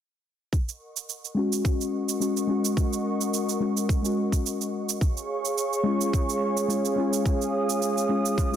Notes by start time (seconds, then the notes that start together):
0.53 A#4 D#5 F#5 C#6, kick, shaker
0.69 shaker
0.97 shaker
1.09 shaker
1.25 shaker
1.34 G#3 C#4
1.39 F#4
1.53 shaker
1.65 kick, shaker
1.81 shaker
2.09 shaker
2.20 G#3 C#4 F#4, shaker
2.37 shaker
2.47 G#3 C#4 F#4
2.65 shaker
2.77 kick, shaker
2.93 shaker
3.21 shaker
3.34 shaker
3.49 shaker
3.60 G#3 C#4 F#4
3.77 shaker
3.89 kick, shaker
4.02 G#3 C#4 F#4, shaker
4.32 kick, shaker
4.46 shaker
4.61 shaker
4.89 shaker
5.01 G#4 C#5 F5 C#6, kick, shaker
5.17 shaker
5.45 shaker
5.58 shaker
5.73 shaker
5.83 G#3 C#4
5.87 F4
6.01 shaker
6.13 kick, shaker
6.29 shaker
6.57 shaker
6.68 G#3 C#4 F4, shaker
6.85 shaker
6.96 G#3 C#4 F4
7.13 shaker
7.25 D#6, kick, shaker
7.42 shaker
7.70 shaker
7.82 shaker
7.98 shaker
8.09 G#3 C#4 F4
8.26 shaker
8.38 kick, shaker
8.52 G#3 C#4